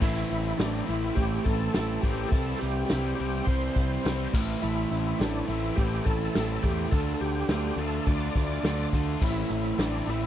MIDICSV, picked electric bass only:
0, 0, Header, 1, 2, 480
1, 0, Start_track
1, 0, Key_signature, 0, "minor"
1, 0, Tempo, 575816
1, 12, Time_signature, 4, 2, 24, 8
1, 8557, End_track
2, 0, Start_track
2, 0, Title_t, "Picked electric bass"
2, 0, Program_c, 0, 34
2, 16, Note_on_c, 0, 33, 99
2, 193, Note_off_c, 0, 33, 0
2, 260, Note_on_c, 0, 33, 85
2, 435, Note_off_c, 0, 33, 0
2, 494, Note_on_c, 0, 33, 96
2, 672, Note_off_c, 0, 33, 0
2, 740, Note_on_c, 0, 33, 94
2, 915, Note_off_c, 0, 33, 0
2, 972, Note_on_c, 0, 33, 89
2, 1151, Note_off_c, 0, 33, 0
2, 1218, Note_on_c, 0, 33, 94
2, 1395, Note_off_c, 0, 33, 0
2, 1468, Note_on_c, 0, 33, 87
2, 1641, Note_off_c, 0, 33, 0
2, 1698, Note_on_c, 0, 33, 94
2, 1874, Note_off_c, 0, 33, 0
2, 1932, Note_on_c, 0, 36, 98
2, 2111, Note_off_c, 0, 36, 0
2, 2187, Note_on_c, 0, 36, 88
2, 2360, Note_off_c, 0, 36, 0
2, 2432, Note_on_c, 0, 36, 94
2, 2604, Note_off_c, 0, 36, 0
2, 2667, Note_on_c, 0, 36, 99
2, 2840, Note_off_c, 0, 36, 0
2, 2895, Note_on_c, 0, 36, 88
2, 3073, Note_off_c, 0, 36, 0
2, 3135, Note_on_c, 0, 36, 95
2, 3313, Note_off_c, 0, 36, 0
2, 3376, Note_on_c, 0, 36, 89
2, 3553, Note_off_c, 0, 36, 0
2, 3620, Note_on_c, 0, 33, 87
2, 3796, Note_off_c, 0, 33, 0
2, 3863, Note_on_c, 0, 33, 97
2, 4038, Note_off_c, 0, 33, 0
2, 4095, Note_on_c, 0, 33, 86
2, 4273, Note_off_c, 0, 33, 0
2, 4334, Note_on_c, 0, 33, 103
2, 4512, Note_off_c, 0, 33, 0
2, 4571, Note_on_c, 0, 33, 91
2, 4750, Note_off_c, 0, 33, 0
2, 4818, Note_on_c, 0, 33, 84
2, 4994, Note_off_c, 0, 33, 0
2, 5055, Note_on_c, 0, 33, 100
2, 5232, Note_off_c, 0, 33, 0
2, 5301, Note_on_c, 0, 33, 86
2, 5476, Note_off_c, 0, 33, 0
2, 5537, Note_on_c, 0, 40, 86
2, 5713, Note_off_c, 0, 40, 0
2, 5771, Note_on_c, 0, 38, 96
2, 5949, Note_off_c, 0, 38, 0
2, 6010, Note_on_c, 0, 38, 91
2, 6188, Note_off_c, 0, 38, 0
2, 6241, Note_on_c, 0, 38, 97
2, 6422, Note_off_c, 0, 38, 0
2, 6473, Note_on_c, 0, 38, 90
2, 6658, Note_off_c, 0, 38, 0
2, 6728, Note_on_c, 0, 38, 88
2, 6907, Note_off_c, 0, 38, 0
2, 6969, Note_on_c, 0, 38, 92
2, 7147, Note_off_c, 0, 38, 0
2, 7197, Note_on_c, 0, 38, 91
2, 7380, Note_off_c, 0, 38, 0
2, 7449, Note_on_c, 0, 38, 96
2, 7627, Note_off_c, 0, 38, 0
2, 7686, Note_on_c, 0, 33, 99
2, 7865, Note_off_c, 0, 33, 0
2, 7921, Note_on_c, 0, 33, 85
2, 8102, Note_off_c, 0, 33, 0
2, 8155, Note_on_c, 0, 33, 94
2, 8338, Note_off_c, 0, 33, 0
2, 8398, Note_on_c, 0, 33, 91
2, 8557, Note_off_c, 0, 33, 0
2, 8557, End_track
0, 0, End_of_file